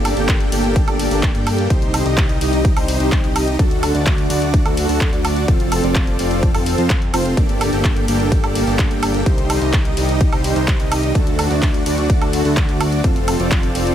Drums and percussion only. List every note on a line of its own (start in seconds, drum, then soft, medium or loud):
0.05 open hi-hat loud
0.05 ride medium
0.05 high woodblock medium
0.17 closed hi-hat soft
0.29 kick loud
0.29 clap loud
0.29 closed hi-hat medium
0.29 ride medium
0.40 closed hi-hat soft
0.52 open hi-hat loud
0.52 ride medium
0.64 closed hi-hat soft
0.76 kick loud
0.76 closed hi-hat medium
0.76 ride medium
0.88 closed hi-hat soft
0.88 high woodblock medium
0.99 open hi-hat loud
0.99 ride medium
1.11 open hi-hat medium
1.23 kick loud
1.23 clap loud
1.23 closed hi-hat medium
1.23 ride medium
1.35 closed hi-hat soft
1.47 open hi-hat loud
1.47 ride medium
1.47 high woodblock medium
1.58 closed hi-hat soft
1.70 kick loud
1.70 closed hi-hat medium
1.70 ride medium
1.82 closed hi-hat soft
1.94 open hi-hat loud
1.94 ride medium
1.94 high woodblock medium
2.06 closed hi-hat soft
2.18 kick loud
2.18 clap loud
2.18 closed hi-hat medium
2.18 ride medium
2.29 closed hi-hat soft
2.41 open hi-hat loud
2.41 ride medium
2.53 closed hi-hat soft
2.65 kick loud
2.65 closed hi-hat medium
2.65 ride medium
2.77 open hi-hat medium
2.77 high woodblock medium
2.88 open hi-hat loud
2.88 ride medium
3.00 closed hi-hat soft
3.12 kick loud
3.12 clap loud
3.12 closed hi-hat medium
3.12 ride medium
3.24 closed hi-hat soft
3.36 open hi-hat loud
3.36 ride medium
3.36 high woodblock medium
3.48 closed hi-hat soft
3.59 kick loud
3.59 closed hi-hat medium
3.59 ride medium
3.71 closed hi-hat soft
3.83 open hi-hat loud
3.83 ride medium
3.83 high woodblock medium
3.95 closed hi-hat soft
4.06 kick loud
4.06 clap loud
4.06 closed hi-hat medium
4.06 ride medium
4.18 closed hi-hat soft
4.30 open hi-hat loud
4.30 ride medium
4.42 closed hi-hat soft
4.54 kick loud
4.54 closed hi-hat medium
4.54 ride medium
4.66 closed hi-hat soft
4.66 high woodblock medium
4.77 open hi-hat loud
4.77 ride medium
4.89 open hi-hat medium
5.01 kick loud
5.01 clap loud
5.01 closed hi-hat medium
5.01 ride medium
5.13 closed hi-hat soft
5.25 open hi-hat loud
5.25 ride medium
5.25 high woodblock medium
5.36 closed hi-hat soft
5.48 kick loud
5.48 closed hi-hat medium
5.48 ride medium
5.60 closed hi-hat soft
5.72 open hi-hat loud
5.72 ride medium
5.72 high woodblock medium
5.84 closed hi-hat soft
5.95 kick loud
5.95 clap loud
5.95 closed hi-hat medium
5.95 ride medium
6.07 closed hi-hat soft
6.19 open hi-hat loud
6.19 ride medium
6.31 closed hi-hat soft
6.43 kick loud
6.43 closed hi-hat medium
6.43 ride medium
6.55 open hi-hat medium
6.55 high woodblock medium
6.66 open hi-hat loud
6.66 ride medium
6.78 closed hi-hat soft
6.90 kick loud
6.90 clap loud
6.90 closed hi-hat medium
6.90 ride medium
7.02 closed hi-hat soft
7.14 open hi-hat loud
7.14 ride medium
7.14 high woodblock medium
7.26 closed hi-hat soft
7.37 kick loud
7.37 closed hi-hat medium
7.37 ride medium
7.49 closed hi-hat soft
7.61 open hi-hat loud
7.61 ride medium
7.61 high woodblock medium
7.73 closed hi-hat soft
7.84 kick loud
7.84 clap loud
7.84 closed hi-hat medium
7.84 ride medium
7.96 closed hi-hat soft
8.08 open hi-hat loud
8.08 ride medium
8.20 closed hi-hat soft
8.32 kick loud
8.32 closed hi-hat medium
8.32 ride medium
8.44 closed hi-hat soft
8.44 high woodblock medium
8.55 open hi-hat loud
8.55 ride medium
8.67 open hi-hat medium
8.79 kick loud
8.79 clap loud
8.79 closed hi-hat medium
8.79 ride medium
8.91 closed hi-hat soft
9.03 open hi-hat loud
9.03 ride medium
9.03 high woodblock medium
9.14 closed hi-hat soft
9.26 kick loud
9.26 closed hi-hat medium
9.26 ride medium
9.38 closed hi-hat soft
9.50 open hi-hat loud
9.50 ride medium
9.50 high woodblock medium
9.62 closed hi-hat soft
9.73 kick loud
9.73 clap loud
9.73 closed hi-hat medium
9.73 ride medium
9.85 closed hi-hat soft
9.97 open hi-hat loud
9.97 ride medium
10.09 closed hi-hat soft
10.21 kick loud
10.21 closed hi-hat medium
10.21 ride medium
10.33 open hi-hat medium
10.33 high woodblock medium
10.44 open hi-hat loud
10.44 ride medium
10.56 closed hi-hat soft
10.68 kick loud
10.68 clap loud
10.68 closed hi-hat medium
10.68 ride medium
10.80 closed hi-hat soft
10.92 open hi-hat loud
10.92 ride medium
10.92 high woodblock medium
11.03 closed hi-hat soft
11.15 kick loud
11.15 closed hi-hat medium
11.15 ride medium
11.27 closed hi-hat soft
11.39 open hi-hat loud
11.39 ride medium
11.39 high woodblock medium
11.51 closed hi-hat soft
11.62 kick loud
11.62 clap loud
11.62 closed hi-hat medium
11.62 ride medium
11.74 closed hi-hat soft
11.86 open hi-hat loud
11.86 ride medium
11.98 closed hi-hat soft
12.10 kick loud
12.10 closed hi-hat medium
12.10 ride medium
12.22 closed hi-hat soft
12.22 high woodblock medium
12.33 open hi-hat loud
12.33 ride medium
12.45 open hi-hat medium
12.57 kick loud
12.57 clap loud
12.57 closed hi-hat medium
12.57 ride medium
12.69 closed hi-hat soft
12.81 open hi-hat loud
12.81 ride medium
12.81 high woodblock medium
12.92 closed hi-hat soft
13.04 kick loud
13.04 closed hi-hat medium
13.04 ride medium
13.16 closed hi-hat soft
13.28 open hi-hat loud
13.28 ride medium
13.28 high woodblock medium
13.40 closed hi-hat soft
13.51 kick loud
13.51 clap loud
13.51 closed hi-hat medium
13.51 ride medium
13.63 closed hi-hat soft
13.75 open hi-hat loud
13.75 ride medium
13.87 closed hi-hat soft